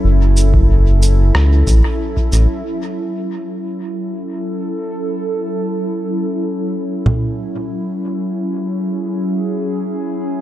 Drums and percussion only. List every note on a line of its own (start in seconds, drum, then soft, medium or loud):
0.37 shaker medium
0.54 kick medium
1.02 shaker medium
1.35 cross-stick medium
1.67 kick medium
1.67 shaker medium
2.17 kick medium
2.32 shaker medium
7.06 low conga medium